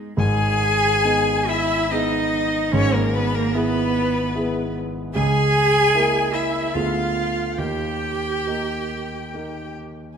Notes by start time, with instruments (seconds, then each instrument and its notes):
Already playing: grand piano G#2 B3 D#4 G#4, cello G#3
0.17 grand piano G#1 G#2, cello G#4, violin G#5
1.05 grand piano B3 D#4 G#4
1.48 cello E4, violin E5
1.91 grand piano B3 D#4 G#4, cello D#4, violin D#5
2.72 grand piano G#1 G#2, cello C#4, violin C#5
2.93 cello A#3, violin A#4
3.13 cello B3, violin B4
3.34 cello A#3, violin A#4
3.54 cello B3, grand piano B3 E4 G#4, violin B4
3.58 violin B4
4.35 grand piano B3 E4 G#4
5.14 grand piano C#2 C#3, cello G#4, violin G#5
5.95 grand piano A#3 E4 A#4
6.33 cello E4, violin E5
6.73 grand piano D2 D3 B3 F4 G#4, cello F4, violin F5
7.57 grand piano D#2 D#3, cello G4, violin G5
8.47 grand piano A#3 D#4 A#4
9.34 grand piano A#3 D#4 A#4